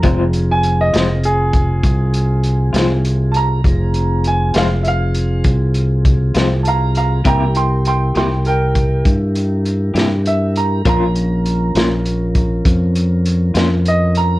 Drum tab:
HH |xxxxxxxxxxxx|xxxxxxxxxxxx|xxxxxxxxxxxx|xxxxxxxxxxxx|
SD |---o-----o--|---o-----o--|---o-----o--|---o-----o--|
BD |o----oo-----|o-----o-o---|o----oo-----|o----oo-----|